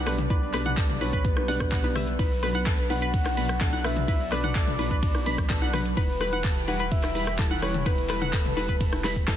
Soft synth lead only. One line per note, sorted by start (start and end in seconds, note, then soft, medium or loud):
0.00 0.30 D5 loud
0.30 1.02 D5 loud
1.01 1.26 C#5 medium
1.25 1.96 B4 medium
2.19 2.86 B4 loud
2.90 3.86 F#5 loud
3.84 4.07 E5 loud
4.08 4.30 E5 loud
4.32 5.69 D5 medium
5.97 6.41 B4 loud
6.68 6.90 F#5 loud
6.92 7.36 E5 loud
7.62 7.87 C#5 loud
7.86 9.28 B4 loud